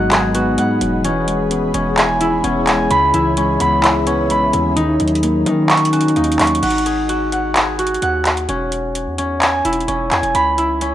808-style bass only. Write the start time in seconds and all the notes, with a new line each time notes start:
Already playing: G#1
0.58 G#2
0.81 E1
1.51 D#1
1.74 E1
2.44 E1
2.91 C#2
3.14 C#2
3.60 C#2
4.30 B1
4.53 D#2
5.00 D#2
5.46 D#3
6.16 D#2
6.39 D#2
6.63 G#1
8.02 D#2
8.49 E1
9.07 E2
9.65 E1
9.88 E1
10.11 E2
10.23 E1
10.35 C#2